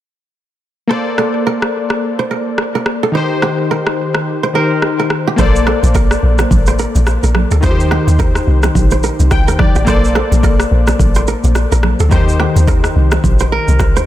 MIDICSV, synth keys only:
0, 0, Header, 1, 2, 480
1, 0, Start_track
1, 0, Key_signature, -2, "major"
1, 0, Tempo, 560748
1, 770, Time_signature, 4, 2, 24, 8
1, 12036, End_track
2, 0, Start_track
2, 0, Title_t, "Synth keys"
2, 0, Program_c, 0, 88
2, 749, Note_on_c, 0, 58, 69
2, 763, Note_on_c, 0, 69, 66
2, 778, Note_on_c, 0, 72, 63
2, 792, Note_on_c, 0, 74, 75
2, 951, Control_c, 0, 64, 127
2, 2645, Note_off_c, 0, 58, 0
2, 2653, Note_off_c, 0, 69, 0
2, 2660, Note_off_c, 0, 72, 0
2, 2667, Note_off_c, 0, 74, 0
2, 2669, Note_on_c, 0, 51, 69
2, 2683, Note_on_c, 0, 63, 65
2, 2697, Note_on_c, 0, 67, 64
2, 2701, Control_c, 0, 64, 0
2, 2712, Note_on_c, 0, 72, 81
2, 2844, Control_c, 0, 64, 127
2, 3856, Note_off_c, 0, 51, 0
2, 3863, Note_off_c, 0, 63, 0
2, 3870, Note_off_c, 0, 67, 0
2, 3878, Note_off_c, 0, 72, 0
2, 3879, Note_on_c, 0, 51, 57
2, 3886, Note_on_c, 0, 63, 50
2, 3893, Note_on_c, 0, 67, 49
2, 3901, Note_on_c, 0, 72, 63
2, 4589, Note_on_c, 0, 58, 72
2, 4603, Note_on_c, 0, 69, 63
2, 4605, Note_off_c, 0, 51, 0
2, 4607, Note_off_c, 0, 72, 0
2, 4608, Note_off_c, 0, 63, 0
2, 4612, Note_off_c, 0, 67, 0
2, 4617, Note_on_c, 0, 72, 65
2, 4620, Control_c, 0, 64, 0
2, 4632, Note_on_c, 0, 74, 77
2, 4777, Control_c, 0, 64, 127
2, 6485, Note_off_c, 0, 58, 0
2, 6493, Note_off_c, 0, 69, 0
2, 6500, Note_off_c, 0, 72, 0
2, 6507, Note_off_c, 0, 74, 0
2, 6509, Note_on_c, 0, 51, 71
2, 6524, Note_on_c, 0, 63, 64
2, 6538, Note_on_c, 0, 65, 50
2, 6543, Control_c, 0, 64, 0
2, 6552, Note_on_c, 0, 72, 81
2, 6594, Note_on_c, 0, 67, 66
2, 6599, Note_off_c, 0, 65, 0
2, 6701, Control_c, 0, 64, 127
2, 7970, Note_on_c, 0, 79, 69
2, 8194, Note_off_c, 0, 79, 0
2, 8211, Note_on_c, 0, 74, 68
2, 8406, Note_off_c, 0, 51, 0
2, 8413, Note_off_c, 0, 63, 0
2, 8427, Note_off_c, 0, 72, 0
2, 8429, Note_on_c, 0, 58, 72
2, 8434, Note_off_c, 0, 74, 0
2, 8444, Note_on_c, 0, 69, 65
2, 8448, Note_off_c, 0, 67, 0
2, 8458, Note_on_c, 0, 72, 63
2, 8461, Control_c, 0, 64, 0
2, 8472, Note_on_c, 0, 74, 81
2, 8631, Control_c, 0, 64, 127
2, 10326, Note_off_c, 0, 58, 0
2, 10333, Note_off_c, 0, 69, 0
2, 10340, Note_off_c, 0, 72, 0
2, 10347, Note_off_c, 0, 74, 0
2, 10349, Note_on_c, 0, 51, 71
2, 10364, Note_on_c, 0, 63, 63
2, 10378, Note_on_c, 0, 67, 62
2, 10380, Control_c, 0, 64, 0
2, 10392, Note_on_c, 0, 72, 75
2, 10517, Control_c, 0, 64, 127
2, 12036, Note_off_c, 0, 51, 0
2, 12036, Note_off_c, 0, 63, 0
2, 12036, Note_off_c, 0, 67, 0
2, 12036, Note_off_c, 0, 72, 0
2, 12036, End_track
0, 0, End_of_file